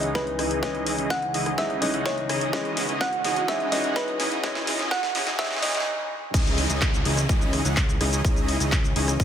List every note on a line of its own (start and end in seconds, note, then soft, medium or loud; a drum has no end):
0.00 5.82 C#2 medium
0.00 5.82 C#3 medium
0.00 0.61 E3 medium
0.00 5.82 E3 medium
0.00 0.62 G#3 medium
0.00 0.63 C#4 medium
0.00 0.21 C#4 medium
0.00 1.59 D#4 loud
0.00 0.21 D#4 medium
0.00 0.21 E4 medium
0.00 2.49 G#4 medium
0.00 0.21 G#4 medium
0.00 0.64 D#5 medium
0.00 5.82 D#5 medium
0.00 0.21 F#5 medium
0.00 closed hi-hat medium
0.00 riser medium
0.15 0.59 B4 medium
0.15 kick loud
0.15 snare medium
0.15 closed hi-hat medium
0.27 closed hi-hat soft
0.39 0.59 C#4 medium
0.39 0.59 D#4 medium
0.39 0.59 E4 medium
0.39 0.59 G#4 medium
0.39 0.59 D#5 loud
0.39 cross-stick medium
0.39 open hi-hat loud
0.51 closed hi-hat medium
0.61 1.54 E3 medium
0.61 1.55 G#3 medium
0.61 0.96 C#4 medium
0.61 1.55 C#4 medium
0.61 0.96 D#4 medium
0.61 0.96 D#5 medium
0.61 1.56 D#5 medium
0.61 kick loud
0.61 snare medium
0.61 closed hi-hat medium
0.75 closed hi-hat soft
0.87 open hi-hat loud
0.98 1.16 C#4 medium
0.98 1.16 D#4 medium
0.98 1.16 E4 medium
0.98 1.16 G#4 medium
0.98 1.16 D#5 medium
0.98 closed hi-hat medium
1.10 1.59 F#5 loud
1.10 kick loud
1.10 snare medium
1.10 closed hi-hat medium
1.22 closed hi-hat soft
1.34 1.52 C#4 medium
1.34 1.52 D#4 medium
1.34 1.52 E4 medium
1.34 1.52 G#4 medium
1.34 1.52 D#5 medium
1.34 open hi-hat loud
1.46 cross-stick medium
1.46 closed hi-hat medium
1.57 1.79 E3 medium
1.57 1.79 G#3 medium
1.57 1.79 C#4 medium
1.57 1.91 D#4 medium
1.57 1.79 D#4 medium
1.57 1.91 E4 medium
1.57 1.91 G#4 medium
1.57 1.91 D#5 medium
1.57 1.80 E5 loud
1.57 kick loud
1.57 snare medium
1.57 closed hi-hat medium
1.70 closed hi-hat soft
1.81 2.50 E3 medium
1.81 2.50 G#3 medium
1.81 2.51 C#4 medium
1.81 2.51 D#4 loud
1.81 2.04 D#5 medium
1.81 cross-stick medium
1.81 open hi-hat loud
1.94 2.11 C#4 medium
1.94 2.11 D#4 medium
1.94 2.11 E4 medium
1.94 2.11 G#4 medium
1.94 2.11 F#5 medium
1.94 closed hi-hat medium
2.06 2.50 C#5 medium
2.06 kick loud
2.06 snare medium
2.06 closed hi-hat medium
2.18 closed hi-hat soft
2.29 2.50 C#4 medium
2.29 2.50 D#4 medium
2.29 2.50 E4 medium
2.29 2.50 G#4 medium
2.29 2.50 D#5 loud
2.29 cross-stick medium
2.29 open hi-hat loud
2.41 closed hi-hat medium
2.52 3.45 E3 medium
2.52 3.45 G#3 medium
2.52 2.86 C#4 medium
2.52 3.46 C#4 medium
2.52 2.86 D#4 medium
2.52 2.86 E4 medium
2.52 5.83 F#4 medium
2.52 2.86 G#4 medium
2.52 2.86 D#5 loud
2.52 3.46 D#5 medium
2.52 kick loud
2.52 snare medium
2.52 closed hi-hat medium
2.65 closed hi-hat soft
2.77 snare medium
2.77 open hi-hat loud
2.89 3.06 C#4 medium
2.89 3.06 D#4 medium
2.89 3.06 E4 medium
2.89 3.06 G#4 medium
2.89 3.06 D#5 medium
2.89 closed hi-hat medium
3.01 3.45 F#5 loud
3.01 kick loud
3.01 snare medium
3.01 closed hi-hat soft
3.13 closed hi-hat soft
3.24 3.42 C#4 medium
3.24 3.42 D#4 medium
3.24 3.42 E4 medium
3.24 3.42 G#4 medium
3.24 3.42 D#5 medium
3.24 snare medium
3.24 open hi-hat loud
3.36 closed hi-hat medium
3.48 3.69 E3 medium
3.48 3.69 G#3 medium
3.48 3.81 C#4 medium
3.48 3.69 C#4 medium
3.48 3.81 D#4 medium
3.48 3.70 D#4 medium
3.48 3.81 E4 medium
3.48 3.81 G#4 medium
3.48 3.81 D#5 medium
3.48 3.73 E5 loud
3.48 kick loud
3.48 snare medium
3.48 closed hi-hat medium
3.60 closed hi-hat soft
3.71 4.40 E3 loud
3.71 4.40 G#3 medium
3.71 4.41 C#4 medium
3.71 4.41 D#4 loud
3.71 3.97 D#5 loud
3.71 snare medium
3.71 open hi-hat loud
3.84 4.02 C#4 medium
3.84 4.02 D#4 medium
3.84 4.02 E4 medium
3.84 4.02 G#4 medium
3.84 4.02 F#5 medium
3.84 closed hi-hat medium
3.96 4.40 B4 medium
3.96 kick loud
3.96 snare medium
3.96 closed hi-hat medium
4.08 closed hi-hat soft
4.20 4.40 C#4 medium
4.20 4.40 D#4 medium
4.20 4.40 E4 medium
4.20 4.40 G#4 medium
4.20 4.40 D#5 loud
4.20 snare medium
4.20 open hi-hat loud
4.32 closed hi-hat medium
4.42 5.35 E3 medium
4.42 5.36 G#3 medium
4.42 4.76 C#4 medium
4.42 5.36 C#4 medium
4.42 4.76 D#4 medium
4.42 4.76 E4 medium
4.42 4.76 G#4 medium
4.42 4.76 D#5 loud
4.42 5.37 D#5 medium
4.42 kick loud
4.42 snare medium
4.42 closed hi-hat medium
4.55 snare medium
4.55 closed hi-hat soft
4.67 snare loud
4.67 open hi-hat loud
4.79 4.97 C#4 medium
4.79 4.97 D#4 medium
4.79 4.97 E4 medium
4.79 4.97 G#4 medium
4.79 4.97 D#5 medium
4.79 snare medium
4.79 closed hi-hat soft
4.91 5.40 F#5 loud
4.91 kick loud
4.91 snare loud
4.91 closed hi-hat soft
5.03 snare medium
5.03 closed hi-hat soft
5.15 5.32 C#4 medium
5.15 5.32 D#4 medium
5.15 5.32 E4 medium
5.15 5.32 G#4 medium
5.15 5.32 D#5 medium
5.15 snare loud
5.15 open hi-hat loud
5.27 snare medium
5.27 closed hi-hat medium
5.38 5.60 E3 medium
5.38 5.60 G#3 medium
5.38 5.60 C#4 medium
5.38 5.60 D#4 medium
5.38 5.63 E5 loud
5.38 kick loud
5.38 snare loud
5.38 closed hi-hat medium
5.45 snare medium
5.51 snare medium
5.51 closed hi-hat soft
5.57 snare medium
5.61 5.86 E3 medium
5.61 5.86 G#3 medium
5.61 5.87 C#4 medium
5.61 5.87 D#4 medium
5.61 5.87 D#5 medium
5.61 snare loud
5.61 open hi-hat loud
5.68 snare loud
5.75 5.86 C#4 medium
5.75 5.86 D#4 medium
5.75 5.86 E4 medium
5.75 5.86 G#4 medium
5.75 5.86 F#5 medium
5.75 snare medium
5.75 closed hi-hat medium
5.80 snare medium
6.34 6.67 C#2 loud
6.34 9.24 C#3 medium
6.34 9.24 E3 medium
6.34 9.24 C#4 medium
6.34 6.67 C#4 medium
6.34 6.67 D#4 medium
6.34 6.67 E4 medium
6.34 9.24 G#4 medium
6.34 6.67 G#4 medium
6.34 9.24 C#5 medium
6.34 6.67 D#5 loud
6.34 kick loud
6.34 closed hi-hat medium
6.34 crash loud
6.34 downlifter medium
6.34 shaker medium
6.46 closed hi-hat soft
6.46 shaker soft
6.58 open hi-hat loud
6.70 7.03 C#2 loud
6.70 6.87 C#4 medium
6.70 6.87 D#4 medium
6.70 6.87 E4 medium
6.70 6.87 G#4 medium
6.70 6.87 D#5 medium
6.70 closed hi-hat medium
6.70 shaker medium
6.81 kick loud
6.81 clap loud
6.81 closed hi-hat medium
6.81 shaker medium
6.94 closed hi-hat soft
6.94 shaker soft
7.05 7.27 C#2 loud
7.05 7.23 C#4 medium
7.05 7.23 D#4 medium
7.05 7.23 E4 medium
7.05 7.23 G#4 medium
7.05 7.23 D#5 medium
7.05 open hi-hat loud
7.17 cross-stick medium
7.17 closed hi-hat medium
7.17 shaker medium
7.29 7.63 C#2 loud
7.29 7.62 C#4 medium
7.29 7.62 D#4 medium
7.29 7.62 E4 medium
7.29 7.62 G#4 medium
7.29 7.62 D#5 loud
7.29 kick loud
7.29 closed hi-hat medium
7.29 shaker medium
7.41 closed hi-hat soft
7.41 shaker soft
7.53 cross-stick medium
7.53 open hi-hat loud
7.65 7.98 C#2 loud
7.65 7.83 C#4 medium
7.65 7.83 D#4 medium
7.65 7.83 E4 medium
7.65 7.82 G#4 medium
7.65 7.83 F#5 medium
7.65 closed hi-hat medium
7.65 shaker medium
7.77 kick loud
7.77 clap loud
7.77 closed hi-hat medium
7.77 shaker medium
7.89 closed hi-hat soft
7.89 shaker soft
8.01 8.22 C#2 loud
8.01 8.21 C#4 medium
8.01 8.21 D#4 medium
8.01 8.21 E4 medium
8.01 8.21 G#4 medium
8.01 8.21 D#5 loud
8.01 cross-stick medium
8.01 open hi-hat loud
8.13 closed hi-hat medium
8.13 shaker medium
8.24 8.58 C#2 loud
8.24 8.57 C#4 medium
8.24 8.57 E4 medium
8.24 8.57 G#4 medium
8.24 kick loud
8.24 closed hi-hat medium
8.24 shaker medium
8.36 closed hi-hat soft
8.36 shaker soft
8.48 open hi-hat loud
8.60 8.94 C#2 loud
8.60 8.78 C#4 medium
8.60 8.78 D#4 medium
8.60 8.78 E4 medium
8.60 8.78 G#4 medium
8.60 8.78 D#5 medium
8.60 closed hi-hat medium
8.60 shaker medium
8.72 kick loud
8.72 clap loud
8.72 closed hi-hat medium
8.72 shaker medium
8.84 closed hi-hat soft
8.84 shaker soft
8.96 9.17 C#2 loud
8.96 9.13 C#4 medium
8.96 9.14 D#4 medium
8.96 9.14 E4 medium
8.96 9.13 G#4 medium
8.96 9.13 D#5 medium
8.96 open hi-hat loud
9.08 cross-stick medium
9.08 closed hi-hat medium
9.08 shaker medium
9.20 9.24 C#2 loud
9.20 9.24 C#4 medium
9.20 9.24 D#4 medium
9.20 9.24 E4 medium
9.20 9.24 G#4 medium
9.20 9.24 D#5 loud
9.20 kick loud
9.20 closed hi-hat medium
9.20 shaker medium